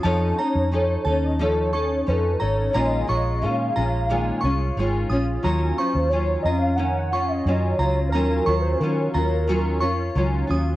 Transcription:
X:1
M:4/4
L:1/16
Q:1/4=89
K:Ebm
V:1 name="Synth bell"
=a2 b2 z2 a3 z ^c' z3 b z | b2 d'2 z2 b3 z d' z3 e' z | b2 d'2 z2 b3 z d' z3 b z | b2 d'2 z2 b3 z d' z3 e' z |]
V:2 name="Soft synth lead"
z2 ^c2 c2 c e c4 _c2 ^c c | e4 f8 z4 | z2 =c2 d2 e f g3 e3 d2 | B2 B =c B8- B2 z2 |]
V:3 name="Steel-string acoustic guitar"
[F,^CE=A]2 [CE]2 [F,CEA]2 [CEA]2 [F,CEA]2 [CEA]2 [F,CEA]2 [CEA]2 | [B,,E,A,DF]2 [A,DF]2 [E,A,DF]2 [A,DF]2 [B,,E,A,DF]2 [A,DF]2 [E,A,DF]2 [A,DF]2 | [E,G,DF]2 [G,DF]2 [E,G,DF]2 [DF]2 [E,D]2 [DF]2 [E,G,DF]2 [G,DF]2 | [E,G,DF]2 [G,DF]2 [E,G,DF]2 [G,DF]2 [E,G,DF]2 [DF]2 [E,G,DF]2 [G,DF]2 |]
V:4 name="Fingered electric bass" clef=bass
F,,2 z F,,3 E,,6 F,,2 ^G,,,2 | B,,,2 B,,,2 B,,2 B,,,4 =C,,2 A,,,2 B,,,2 | E,,2 z E,,3 F,,6 G,,2 D,,2 | E,,2 E,,2 E,2 E,,4 F,,2 D,,2 E,,2 |]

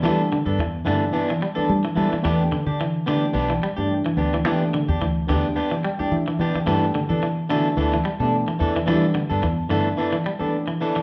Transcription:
X:1
M:4/4
L:1/16
Q:"Swing 16ths" 1/4=109
K:G
V:1 name="Clean electric guitar"
[B,DA] z2 [B,DA] z2 [E,B,DA] z [E,B,D] z2 [B,DA] z2 [E,B,DA] z | [B,DG] z2 [DG] z2 [B,DG] z [B,DG] z2 [DG] z2 [B,DG] z | [B,DG] z2 [DG] z2 [B,DG] z [B,DG] z2 [DG] z2 [B,DG] z | [E,B,DA] z2 [B,DA] z2 [E,B,DA] z [E,B,DA] z2 [DA] z2 [E,DA] z |
[E,B,DA] z2 [B,DA] z2 [E,B,DA] z [E,B,DA] z2 [B,DA] z2 [E,B,DA] z |]
V:2 name="Tine electric piano"
z16 | z16 | z8 z2 g2 e2 d2 | z16 |
z16 |]
V:3 name="Tine electric piano"
[E,A,DG]3 z3 [E,A,DG]2 z3 [E,A,DG]2 z3 | [E,A,DG]3 z3 [E,A,DG]2 z3 [E,A,DG]2 z3 | [E,A,DG]3 z3 [E,A,DG]2 z3 [E,A,DG]2 z3 | [E,A,DG]3 z3 [E,A,DF]2 z3 [E,A,DG]2 z3 |
[E,A,DG]3 z3 [E,A,DA]2 z3 [E,A,DG]2 z3 |]
V:4 name="Clean electric guitar" clef=bass
E,2 D,2 E,2 D,2 z E, G,2 z E,2 E, | E,2 D,2 E,2 D,2 z E, G,2 z E,2 E, | E,2 D,2 E,2 D,2 z E, G,2 z E,2 E, | E,2 D,2 E,2 D,2 z E, G,2 z E,2 E, |
E,2 D,2 E,2 D,2 z E, G,2 z E,2 E, |]
V:5 name="Fingered electric bass" clef=bass
G,3 G,, E,,2 G,,2 z4 G, z G, z | E,,2 z D,4- D, B,,,2 z G,,2 z D,,2 | E,3 E,, D,,2 E,,2 z4 E, z E, z | G,,2 z E,4- E, D,,2 z B,,2 z E,,2 |
G,3 G,, E,,2 G,,2 z8 |]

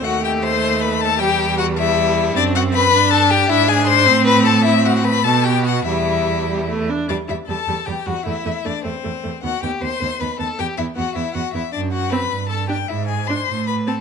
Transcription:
X:1
M:6/8
L:1/16
Q:3/8=103
K:Em
V:1 name="Violin"
f2 g2 c'4 b2 a2 | g4 f2 e6 | d2 f2 b4 a2 g2 | e2 ^g2 ^b4 =b2 a2 |
e2 f2 b2 a2 g2 f2 | e8- e2 z2 | d2 e2 a4 g2 f2 | e4 d2 c6 |
f2 g2 c'4 b2 a2 | g2 e2 f2 e2 f2 e2 | d2 f2 b4 a2 g2 | e2 ^g2 ^b4 =b2 a2 |]
V:2 name="Violin"
F2 G2 c4 B2 A2 | G4 F2 E6 | D2 F2 B4 A2 G2 | E2 ^G2 ^B4 =B2 A2 |
E2 F2 B2 A2 G2 F2 | E8- E2 z2 | D2 E2 A4 G2 F2 | E4 D2 C6 |
F2 G2 c4 B2 A2 | G2 E2 F2 E2 F2 E2 | D2 F2 B4 A2 G2 | E2 ^G2 ^B4 =B2 A2 |]
V:3 name="Viola"
A,12 | G,6 G,6 | C6 D6 | D6 C6 |
C6 B,6 | G,6 G,2 A,2 D2 | G,2 G,2 G,2 G,2 G,2 G,2 | A,2 A,2 A,2 A,2 A,2 A,2 |
B,2 B,2 B,2 B,2 B,2 B,2 | B,2 B,2 B,2 B,2 B,2 B,2 | z4 C z4 z D z | z4 D z4 z C z |]
V:4 name="Cello" clef=bass
^D,,12 | E,,12 | F,,6 G,,6 | ^G,,6 A,,6- |
A,,6 B,,6 | E,,8- E,,2 z2 | E,,2 E,,2 E,,2 E,,2 E,,2 E,,2 | E,,2 E,,2 E,,2 E,,2 E,,2 E,,2 |
^D,,2 D,,2 D,,2 D,,2 D,,2 D,,2 | E,,2 E,,2 E,,2 E,,2 E,,2 E,,2 | F,,6 G,,6 | ^G,,6 A,,6 |]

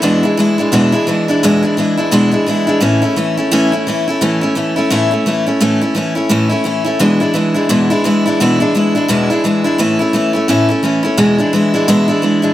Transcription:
X:1
M:4/4
L:1/8
Q:"Swing" 1/4=172
K:A
V:1 name="Steel-string acoustic guitar"
[E,,B,,E,G,DE] [E,G,DE] [E,G,DE] [E,G,DE] [E,,B,,E,G,DE] [E,G,DE] [E,G,DE] [E,G,DE] | [E,,B,,E,G,DE] [E,G,DE] [E,G,DE] [E,G,DE] [E,,B,,E,G,DE] [E,G,DE] [E,G,DE] [E,G,DE] | [A,,E,A,CE] [A,CE] [E,A,CE] [A,CE] [A,,E,A,CE] [A,CE] [E,A,CE] [A,CE] | [A,,E,A,CE] [A,CE] [E,A,CE] [A,CE] [A,,E,A,CE] [A,CE] [E,A,CE] [A,CE] |
[A,,E,A,CE] [A,CE] [E,A,CE] [A,CE] [A,,E,A,CE] [A,CE] [E,A,CE] [A,CE] | [E,,B,,E,G,DE] [E,G,DE] [E,G,DE] [E,G,DE] [E,,B,,E,G,DE] [E,G,DE] [E,G,DE] [E,G,DE] | [E,,B,,E,G,DE] [E,G,DE] [E,G,DE] [E,G,DE] [E,,B,,E,G,DE] [E,G,DE] [E,G,DE] [E,G,DE] | [A,,E,A,CE] [A,CE] [E,A,CE] [A,CE] [A,,E,A,CE] [A,CE] [E,A,CE] [A,CE] |
[E,,B,,E,G,DE] [E,G,DE] [E,G,DE] [E,G,DE] [E,,B,,E,G,DE] [E,G,DE] [E,G,DE] [E,G,DE] |]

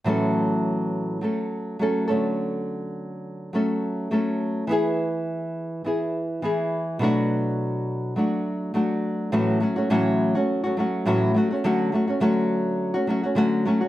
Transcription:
X:1
M:4/4
L:1/16
Q:"Swing 16ths" 1/4=104
K:A
V:1 name="Nylon-string guitar"
[A,,E,F,A,CA]8 [F,A,CA]4 [F,A,CA]2 [D,F,A,CA]2- | [D,F,A,CA]8 [F,A,CA]4 [F,A,CA]4 | [E,B,EG]8 [E,B,EG]4 [E,B,EG]4 | [B,,F,A,DF]8 [F,A,DF]4 [F,A,DF]4 |
[A,,E,F,A,CF]2 [F,A,CF] [F,A,CF] [A,,E,F,A,CF]3 [F,A,CF]2 [F,A,CF] [F,A,CF]2 [A,,E,F,A,CF]2 [F,A,CF] [A,CF] | [D,F,A,CF]2 [F,A,CF] [A,CF] [D,F,A,CF]4- [D,F,A,CF] [A,CF] [F,A,CF] [A,CF] [D,F,A,CF]2 [F,A,CF] [A,CF] |]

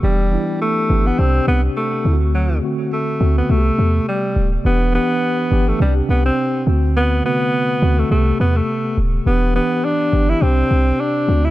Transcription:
X:1
M:4/4
L:1/16
Q:"Swing 16ths" 1/4=104
K:Em
V:1 name="Tine electric piano"
[E,B,DG]2 [E,B,DE]4 [E,B,DG]2 [C,CDG]4 z2 [D,A,CEF]2- | [D,A,CEF]2 [D,A,CF]4 [D,A,CF]2 [C,A,B,FG]6 z2 | [E,B,DG]2 [E,B,DG]4 [E,B,DG]2 [C,CDG]4 z2 [D,A,CF]2- | [D,A,CF]2 [C,D,A,F]4 [D,A,CF]2 [C,A,B,G]6 z2 |
[E,B,DG]2 [E,B,DG]4 [E,B,DG]2 [C,CDG]4 z2 [D,A,CF]2 |]
V:2 name="Alto saxophone"
G,4 A,3 B, C2 B,2 A,3 z | F,2 z2 A,3 B, A,4 G,3 z | B,2 B,4- B, A, G,2 B, C3 z2 | B,2 B,4- B, A, A,2 B, A,3 z2 |
B,2 B,2 D3 E C4 D3 E |]
V:3 name="808-style bass" clef=bass
E,,,3 z3 G,,,2 C,,2 C,,2 z2 D,,2- | D,,3 z3 D,,2 C,,2 E,,2 z2 D,,,2 | E,,,3 z3 G,,,2 C,,2 C,,2 z2 D,,2- | D,,3 z3 D,,2 C,,2 E,,2 z2 D,,,2 |
E,,,3 z3 G,,,2 C,,2 C,,2 z2 D,,2 |]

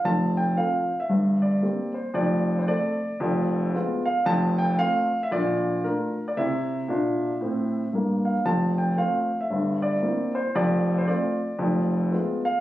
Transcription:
X:1
M:4/4
L:1/16
Q:"Swing" 1/4=114
K:F
V:1 name="Grand piano"
a2 g2 f3 e3 d4 c2 | d3 c d8- d2 f2 | a2 g2 f3 e d4 B3 d | e12 z2 f2 |
a2 g2 f3 e3 d4 c2 | d3 c d8- d2 f2 |]
V:2 name="Grand piano"
[F,,,F,,]4 [F,CA]4 [G,,,G,,]4 [B,CG]4 | [F,,,F,,]4 [A,CA]4 [F,,,F,,]4 [_A,_CF]4 | [F,,,F,,]4 [A,CF]4 [B,,,B,,]4 [A,DF]4 | [C,E]4 [B,,D]4 [A,,C]4 [G,,B,]4 |
[F,,,F,,]4 [A,CF]4 [G,,,G,,]4 [B,CE]4 | [F,,,F,,]4 [A,CF]4 [F,,,F,,]4 [_A,_CF]4 |]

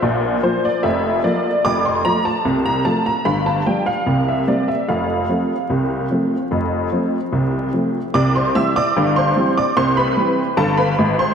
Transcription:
X:1
M:2/4
L:1/16
Q:1/4=74
K:F
V:1 name="Honky-tonk piano"
d2 c d e2 d2 | d' c' b a2 b a b | =b a g f2 e d e | f8- |
f6 z2 | [K:C] [dd'] [cc'] [ee'] [dd']2 [cc']2 [dd'] | [cc'] [Bb]3 [Aa] [Bb]2 [cc'] |]
V:2 name="Honky-tonk piano" clef=bass
[B,,,B,,]2 [F,B,F]2 [F,,,F,,]2 [F,B,F]2 | [F,,,F,,]2 [F,A,F]2 [C,,C,]2 [F,A,F]2 | [G,,,G,,]2 [F,G,D]2 [C,,C,]2 [G,B,C]2 | [F,,,F,,]2 [F,A,C]2 [C,,C,]2 [F,A,C]2 |
[F,,,F,,]2 [F,A,C]2 [C,,C,]2 [F,A,C]2 | [K:C] [C,,C,]2 [E,G,C]2 [G,,,G,,]2 [E,G,C]2 | [C,,C,]2 [E,G,C]2 [G,,,G,,]2 [_A,,,_A,,]2 |]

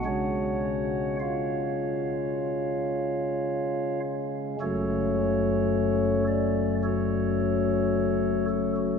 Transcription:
X:1
M:4/4
L:1/16
Q:1/4=53
K:F#m
V:1 name="Pipe organ"
[Fcf]4 [^Ec^e]8- [Ece]2 z2 | [FAc]6 d2 [FAc]6 A F |]
V:2 name="Pipe organ" clef=bass
[C,G,C]16 | [F,,,F,,F,A,C]16 |]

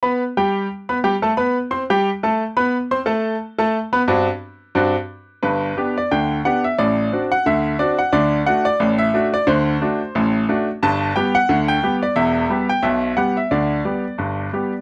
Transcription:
X:1
M:2/4
L:1/16
Q:"Swing 16ths" 1/4=89
K:G
V:1 name="Grand piano"
[B,Bb]2 [G,Gg]3 [B,Bb] [G,Gg] [A,Aa] | [B,Bb]2 [Ccc'] [G,Gg]2 [A,Aa]2 [B,Bb]- | [B,Bb] [Ccc'] [A,Aa]3 [A,Aa]2 [B,Bb] | [G,,CDF]2 z2 [G,,CDF]2 z2 |
B3 d g2 f e | d3 f e2 d f | d2 f d2 e2 d | c6 z2 |
a2 g f2 g2 d | e3 g e2 f e | d8 |]
V:2 name="Grand piano"
z8 | z8 | z8 | z8 |
[G,,,G,,]2 [B,DG]2 [D,,D,]2 [B,DG]2 | [A,,,A,,]2 [CDF]2 [D,,D,]2 [CDF]2 | [D,,D,]2 [A,DF]2 [A,,,A,,]2 [A,DF]2 | [D,,D,]2 [A,DF]2 [A,,,A,,]2 [A,DF]2 |
[G,,,G,,]2 [G,B,G]2 [D,,D,]2 [G,B,G]2 | [E,,,E,,]2 [G,B,G]2 [B,,,B,,]2 [G,B,G]2 | [D,,D,]2 [G,B,G]2 [G,,,G,,]2 [G,B,G]2 |]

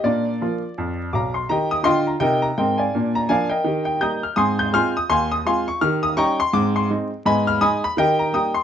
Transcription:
X:1
M:4/4
L:1/8
Q:"Swing" 1/4=167
K:Eb
V:1 name="Grand piano"
[Fd]6 [fbd'] c' | [egb] e' [egc'] b [Beg] b [Beg] [dfa]- | [dfa] b [dfa] [Beg]2 g [be'g'] f' | [ac'e'] g' [ac'f'] e' [fac'] e' [fac'] _d' |
f' e' [gb_d'] c' =d' c' z2 | [ea_c'] f' [ac'e'] c' [Beg] b [gbe'] =c' |]
V:2 name="Grand piano"
[B,,D]2 [F,B,F]2 F,,2 [_C,,_C,]2 | [E,G]2 [D,F]2 [C,E]2 [A,,C]2 | [B,,D]2 [F,B,D]2 [E,G]2 [G,B,E]2 | [A,,C]2 [A,CF]2 E,,2 [A,CF]2 |
[E,G]2 [G,_DE]2 [A,,C]2 [A,CE]2 | [A,,_C]2 [A,E]2 [E,G]2 [G,B,E]2 |]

